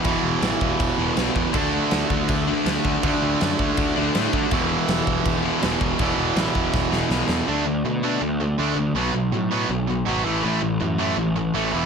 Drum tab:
CC |x-x-x-x-|x-x-x-x-|x-x-x-x-|x-x-x-x-|
SD |--o---o-|--o---o-|--o---o-|--o---o-|
BD |o--oo--o|o--oo--o|o--oo--o|o--oo--o|

CC |x-x-----|--------|--------|--------|
SD |--o-oooo|--------|--------|--------|
BD |o--oo---|--------|--------|--------|